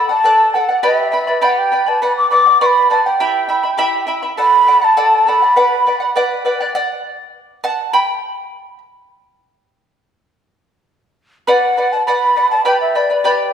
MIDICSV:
0, 0, Header, 1, 3, 480
1, 0, Start_track
1, 0, Key_signature, 2, "minor"
1, 0, Tempo, 591133
1, 668, Time_signature, 2, 2, 24, 8
1, 10986, End_track
2, 0, Start_track
2, 0, Title_t, "Quena"
2, 0, Program_c, 0, 77
2, 80, Note_on_c, 0, 81, 93
2, 439, Note_on_c, 0, 78, 80
2, 452, Note_off_c, 0, 81, 0
2, 674, Note_off_c, 0, 78, 0
2, 688, Note_on_c, 0, 76, 92
2, 1170, Note_on_c, 0, 78, 80
2, 1182, Note_off_c, 0, 76, 0
2, 1287, Note_on_c, 0, 79, 82
2, 1299, Note_off_c, 0, 78, 0
2, 1527, Note_on_c, 0, 81, 82
2, 1539, Note_off_c, 0, 79, 0
2, 1638, Note_off_c, 0, 81, 0
2, 1658, Note_on_c, 0, 83, 94
2, 1757, Note_off_c, 0, 83, 0
2, 1766, Note_on_c, 0, 86, 94
2, 1867, Note_off_c, 0, 86, 0
2, 1872, Note_on_c, 0, 86, 99
2, 2095, Note_off_c, 0, 86, 0
2, 2122, Note_on_c, 0, 85, 82
2, 2160, Note_on_c, 0, 83, 89
2, 2169, Note_off_c, 0, 85, 0
2, 2340, Note_off_c, 0, 83, 0
2, 2359, Note_on_c, 0, 81, 79
2, 2467, Note_off_c, 0, 81, 0
2, 2479, Note_on_c, 0, 79, 80
2, 3284, Note_off_c, 0, 79, 0
2, 3570, Note_on_c, 0, 83, 105
2, 3932, Note_on_c, 0, 81, 99
2, 3944, Note_off_c, 0, 83, 0
2, 4292, Note_on_c, 0, 83, 94
2, 4304, Note_off_c, 0, 81, 0
2, 5004, Note_off_c, 0, 83, 0
2, 9328, Note_on_c, 0, 78, 88
2, 9681, Note_on_c, 0, 81, 88
2, 9694, Note_off_c, 0, 78, 0
2, 9792, Note_off_c, 0, 81, 0
2, 9797, Note_on_c, 0, 83, 89
2, 10130, Note_off_c, 0, 83, 0
2, 10156, Note_on_c, 0, 81, 85
2, 10267, Note_off_c, 0, 81, 0
2, 10283, Note_on_c, 0, 79, 88
2, 10390, Note_off_c, 0, 79, 0
2, 10401, Note_on_c, 0, 76, 83
2, 10524, Note_on_c, 0, 74, 83
2, 10536, Note_off_c, 0, 76, 0
2, 10986, Note_off_c, 0, 74, 0
2, 10986, End_track
3, 0, Start_track
3, 0, Title_t, "Charango"
3, 0, Program_c, 1, 24
3, 74, Note_on_c, 1, 78, 56
3, 88, Note_on_c, 1, 74, 43
3, 190, Note_off_c, 1, 78, 0
3, 193, Note_off_c, 1, 74, 0
3, 196, Note_on_c, 1, 69, 78
3, 205, Note_on_c, 1, 74, 86
3, 207, Note_on_c, 1, 78, 95
3, 432, Note_off_c, 1, 69, 0
3, 437, Note_off_c, 1, 74, 0
3, 437, Note_off_c, 1, 78, 0
3, 444, Note_on_c, 1, 69, 59
3, 451, Note_on_c, 1, 74, 56
3, 456, Note_on_c, 1, 78, 63
3, 548, Note_off_c, 1, 78, 0
3, 556, Note_off_c, 1, 69, 0
3, 557, Note_off_c, 1, 74, 0
3, 558, Note_on_c, 1, 78, 52
3, 566, Note_on_c, 1, 74, 42
3, 666, Note_off_c, 1, 74, 0
3, 673, Note_off_c, 1, 78, 0
3, 673, Note_on_c, 1, 79, 82
3, 674, Note_on_c, 1, 67, 78
3, 676, Note_on_c, 1, 71, 87
3, 676, Note_on_c, 1, 74, 90
3, 678, Note_on_c, 1, 83, 86
3, 898, Note_off_c, 1, 79, 0
3, 907, Note_off_c, 1, 71, 0
3, 907, Note_off_c, 1, 74, 0
3, 907, Note_on_c, 1, 79, 58
3, 911, Note_off_c, 1, 67, 0
3, 911, Note_off_c, 1, 83, 0
3, 916, Note_on_c, 1, 71, 60
3, 917, Note_on_c, 1, 74, 60
3, 921, Note_on_c, 1, 83, 66
3, 1024, Note_off_c, 1, 83, 0
3, 1028, Note_off_c, 1, 79, 0
3, 1030, Note_off_c, 1, 74, 0
3, 1033, Note_off_c, 1, 71, 0
3, 1034, Note_on_c, 1, 83, 56
3, 1040, Note_on_c, 1, 74, 49
3, 1047, Note_on_c, 1, 71, 44
3, 1145, Note_off_c, 1, 71, 0
3, 1146, Note_off_c, 1, 83, 0
3, 1148, Note_off_c, 1, 74, 0
3, 1149, Note_on_c, 1, 67, 85
3, 1154, Note_on_c, 1, 79, 79
3, 1155, Note_on_c, 1, 71, 76
3, 1155, Note_on_c, 1, 83, 89
3, 1157, Note_on_c, 1, 74, 87
3, 1384, Note_off_c, 1, 79, 0
3, 1388, Note_off_c, 1, 71, 0
3, 1389, Note_off_c, 1, 67, 0
3, 1392, Note_off_c, 1, 74, 0
3, 1393, Note_off_c, 1, 83, 0
3, 1393, Note_on_c, 1, 79, 53
3, 1398, Note_on_c, 1, 71, 57
3, 1402, Note_on_c, 1, 74, 53
3, 1406, Note_on_c, 1, 83, 62
3, 1504, Note_off_c, 1, 83, 0
3, 1512, Note_off_c, 1, 79, 0
3, 1514, Note_off_c, 1, 71, 0
3, 1514, Note_on_c, 1, 83, 53
3, 1516, Note_off_c, 1, 74, 0
3, 1525, Note_on_c, 1, 74, 46
3, 1528, Note_on_c, 1, 71, 38
3, 1628, Note_off_c, 1, 71, 0
3, 1632, Note_off_c, 1, 74, 0
3, 1632, Note_off_c, 1, 83, 0
3, 1638, Note_on_c, 1, 71, 77
3, 1642, Note_on_c, 1, 74, 76
3, 1646, Note_on_c, 1, 78, 86
3, 1863, Note_off_c, 1, 71, 0
3, 1871, Note_off_c, 1, 74, 0
3, 1872, Note_on_c, 1, 71, 56
3, 1876, Note_off_c, 1, 78, 0
3, 1880, Note_on_c, 1, 74, 62
3, 1885, Note_on_c, 1, 78, 65
3, 1988, Note_off_c, 1, 78, 0
3, 1992, Note_off_c, 1, 71, 0
3, 1996, Note_off_c, 1, 74, 0
3, 1998, Note_on_c, 1, 78, 52
3, 2008, Note_on_c, 1, 74, 42
3, 2112, Note_off_c, 1, 74, 0
3, 2114, Note_off_c, 1, 78, 0
3, 2120, Note_on_c, 1, 71, 77
3, 2122, Note_on_c, 1, 74, 92
3, 2128, Note_on_c, 1, 78, 84
3, 2345, Note_off_c, 1, 71, 0
3, 2351, Note_off_c, 1, 74, 0
3, 2355, Note_off_c, 1, 78, 0
3, 2355, Note_on_c, 1, 71, 61
3, 2361, Note_on_c, 1, 74, 64
3, 2364, Note_on_c, 1, 78, 58
3, 2473, Note_off_c, 1, 71, 0
3, 2475, Note_off_c, 1, 78, 0
3, 2476, Note_off_c, 1, 74, 0
3, 2485, Note_on_c, 1, 78, 53
3, 2493, Note_on_c, 1, 74, 38
3, 2597, Note_off_c, 1, 74, 0
3, 2597, Note_off_c, 1, 78, 0
3, 2600, Note_on_c, 1, 67, 78
3, 2600, Note_on_c, 1, 79, 83
3, 2604, Note_on_c, 1, 64, 78
3, 2605, Note_on_c, 1, 83, 85
3, 2606, Note_on_c, 1, 76, 82
3, 2820, Note_off_c, 1, 79, 0
3, 2824, Note_off_c, 1, 64, 0
3, 2828, Note_off_c, 1, 76, 0
3, 2829, Note_off_c, 1, 83, 0
3, 2830, Note_on_c, 1, 79, 61
3, 2833, Note_on_c, 1, 64, 57
3, 2836, Note_off_c, 1, 67, 0
3, 2838, Note_on_c, 1, 76, 59
3, 2839, Note_on_c, 1, 83, 67
3, 2941, Note_off_c, 1, 83, 0
3, 2951, Note_off_c, 1, 76, 0
3, 2951, Note_off_c, 1, 79, 0
3, 2951, Note_on_c, 1, 83, 56
3, 2953, Note_off_c, 1, 64, 0
3, 2960, Note_on_c, 1, 76, 48
3, 2963, Note_on_c, 1, 64, 39
3, 3064, Note_off_c, 1, 83, 0
3, 3065, Note_off_c, 1, 64, 0
3, 3065, Note_off_c, 1, 76, 0
3, 3066, Note_on_c, 1, 67, 90
3, 3071, Note_on_c, 1, 79, 91
3, 3074, Note_on_c, 1, 64, 98
3, 3074, Note_on_c, 1, 83, 99
3, 3075, Note_on_c, 1, 76, 97
3, 3292, Note_off_c, 1, 79, 0
3, 3300, Note_off_c, 1, 76, 0
3, 3301, Note_off_c, 1, 64, 0
3, 3302, Note_on_c, 1, 79, 65
3, 3305, Note_off_c, 1, 83, 0
3, 3309, Note_off_c, 1, 67, 0
3, 3309, Note_on_c, 1, 76, 69
3, 3311, Note_on_c, 1, 64, 67
3, 3315, Note_on_c, 1, 83, 67
3, 3422, Note_off_c, 1, 76, 0
3, 3422, Note_off_c, 1, 83, 0
3, 3427, Note_off_c, 1, 79, 0
3, 3431, Note_on_c, 1, 76, 50
3, 3431, Note_on_c, 1, 83, 53
3, 3432, Note_off_c, 1, 64, 0
3, 3442, Note_on_c, 1, 64, 42
3, 3548, Note_off_c, 1, 64, 0
3, 3551, Note_on_c, 1, 69, 72
3, 3552, Note_off_c, 1, 76, 0
3, 3552, Note_off_c, 1, 83, 0
3, 3557, Note_on_c, 1, 74, 82
3, 3559, Note_on_c, 1, 78, 87
3, 3778, Note_off_c, 1, 69, 0
3, 3784, Note_off_c, 1, 74, 0
3, 3788, Note_on_c, 1, 69, 59
3, 3793, Note_off_c, 1, 78, 0
3, 3798, Note_on_c, 1, 74, 62
3, 3802, Note_on_c, 1, 78, 64
3, 3899, Note_off_c, 1, 78, 0
3, 3909, Note_on_c, 1, 78, 51
3, 3911, Note_off_c, 1, 69, 0
3, 3911, Note_off_c, 1, 74, 0
3, 3920, Note_on_c, 1, 74, 40
3, 4025, Note_off_c, 1, 74, 0
3, 4029, Note_off_c, 1, 78, 0
3, 4034, Note_on_c, 1, 69, 89
3, 4035, Note_on_c, 1, 74, 77
3, 4038, Note_on_c, 1, 78, 97
3, 4267, Note_off_c, 1, 69, 0
3, 4275, Note_off_c, 1, 74, 0
3, 4276, Note_off_c, 1, 78, 0
3, 4277, Note_on_c, 1, 69, 61
3, 4287, Note_on_c, 1, 74, 61
3, 4292, Note_on_c, 1, 78, 66
3, 4392, Note_off_c, 1, 78, 0
3, 4396, Note_off_c, 1, 69, 0
3, 4401, Note_off_c, 1, 74, 0
3, 4401, Note_on_c, 1, 78, 47
3, 4414, Note_on_c, 1, 74, 44
3, 4512, Note_off_c, 1, 74, 0
3, 4512, Note_off_c, 1, 78, 0
3, 4516, Note_on_c, 1, 71, 77
3, 4522, Note_on_c, 1, 74, 84
3, 4522, Note_on_c, 1, 78, 88
3, 4748, Note_off_c, 1, 71, 0
3, 4754, Note_off_c, 1, 74, 0
3, 4758, Note_off_c, 1, 78, 0
3, 4758, Note_on_c, 1, 71, 54
3, 4764, Note_on_c, 1, 74, 63
3, 4772, Note_on_c, 1, 78, 58
3, 4862, Note_off_c, 1, 78, 0
3, 4872, Note_on_c, 1, 78, 59
3, 4876, Note_off_c, 1, 71, 0
3, 4876, Note_off_c, 1, 74, 0
3, 4885, Note_on_c, 1, 74, 43
3, 4993, Note_off_c, 1, 78, 0
3, 4995, Note_off_c, 1, 74, 0
3, 4999, Note_on_c, 1, 71, 92
3, 5005, Note_on_c, 1, 74, 99
3, 5008, Note_on_c, 1, 78, 99
3, 5225, Note_off_c, 1, 71, 0
3, 5232, Note_off_c, 1, 74, 0
3, 5235, Note_off_c, 1, 78, 0
3, 5235, Note_on_c, 1, 71, 63
3, 5242, Note_on_c, 1, 74, 70
3, 5245, Note_on_c, 1, 78, 65
3, 5353, Note_off_c, 1, 78, 0
3, 5355, Note_off_c, 1, 71, 0
3, 5359, Note_off_c, 1, 74, 0
3, 5363, Note_on_c, 1, 78, 55
3, 5372, Note_on_c, 1, 74, 43
3, 5471, Note_off_c, 1, 78, 0
3, 5478, Note_off_c, 1, 74, 0
3, 5480, Note_on_c, 1, 78, 73
3, 5488, Note_on_c, 1, 74, 56
3, 6171, Note_off_c, 1, 74, 0
3, 6197, Note_off_c, 1, 78, 0
3, 6202, Note_on_c, 1, 81, 71
3, 6207, Note_on_c, 1, 78, 61
3, 6426, Note_off_c, 1, 78, 0
3, 6440, Note_off_c, 1, 81, 0
3, 6443, Note_on_c, 1, 79, 65
3, 6443, Note_on_c, 1, 83, 67
3, 7128, Note_off_c, 1, 83, 0
3, 7129, Note_off_c, 1, 79, 0
3, 9316, Note_on_c, 1, 71, 75
3, 9323, Note_on_c, 1, 74, 77
3, 9324, Note_on_c, 1, 78, 83
3, 9549, Note_off_c, 1, 71, 0
3, 9554, Note_off_c, 1, 74, 0
3, 9559, Note_on_c, 1, 71, 54
3, 9560, Note_off_c, 1, 78, 0
3, 9563, Note_on_c, 1, 74, 56
3, 9569, Note_on_c, 1, 78, 62
3, 9677, Note_off_c, 1, 78, 0
3, 9678, Note_off_c, 1, 71, 0
3, 9680, Note_off_c, 1, 74, 0
3, 9686, Note_on_c, 1, 78, 56
3, 9699, Note_on_c, 1, 74, 42
3, 9797, Note_off_c, 1, 74, 0
3, 9801, Note_off_c, 1, 78, 0
3, 9801, Note_on_c, 1, 71, 71
3, 9807, Note_on_c, 1, 74, 82
3, 9811, Note_on_c, 1, 78, 88
3, 10026, Note_off_c, 1, 71, 0
3, 10032, Note_off_c, 1, 74, 0
3, 10036, Note_on_c, 1, 71, 55
3, 10039, Note_off_c, 1, 78, 0
3, 10042, Note_on_c, 1, 74, 62
3, 10049, Note_on_c, 1, 78, 64
3, 10150, Note_off_c, 1, 78, 0
3, 10155, Note_off_c, 1, 71, 0
3, 10158, Note_off_c, 1, 74, 0
3, 10160, Note_on_c, 1, 78, 52
3, 10171, Note_on_c, 1, 74, 44
3, 10267, Note_off_c, 1, 74, 0
3, 10269, Note_off_c, 1, 78, 0
3, 10270, Note_on_c, 1, 67, 73
3, 10272, Note_on_c, 1, 79, 72
3, 10275, Note_on_c, 1, 71, 86
3, 10277, Note_on_c, 1, 74, 79
3, 10279, Note_on_c, 1, 83, 85
3, 10507, Note_off_c, 1, 79, 0
3, 10510, Note_off_c, 1, 71, 0
3, 10511, Note_off_c, 1, 74, 0
3, 10512, Note_off_c, 1, 67, 0
3, 10514, Note_off_c, 1, 83, 0
3, 10516, Note_on_c, 1, 79, 55
3, 10520, Note_on_c, 1, 71, 64
3, 10521, Note_on_c, 1, 74, 58
3, 10523, Note_on_c, 1, 83, 67
3, 10626, Note_off_c, 1, 83, 0
3, 10633, Note_off_c, 1, 74, 0
3, 10634, Note_off_c, 1, 79, 0
3, 10636, Note_off_c, 1, 71, 0
3, 10636, Note_on_c, 1, 83, 54
3, 10643, Note_on_c, 1, 74, 49
3, 10647, Note_on_c, 1, 71, 47
3, 10749, Note_off_c, 1, 74, 0
3, 10750, Note_off_c, 1, 83, 0
3, 10751, Note_off_c, 1, 71, 0
3, 10753, Note_on_c, 1, 67, 78
3, 10755, Note_on_c, 1, 79, 81
3, 10759, Note_on_c, 1, 74, 90
3, 10760, Note_on_c, 1, 71, 84
3, 10760, Note_on_c, 1, 83, 87
3, 10986, Note_off_c, 1, 67, 0
3, 10986, Note_off_c, 1, 71, 0
3, 10986, Note_off_c, 1, 74, 0
3, 10986, Note_off_c, 1, 79, 0
3, 10986, Note_off_c, 1, 83, 0
3, 10986, End_track
0, 0, End_of_file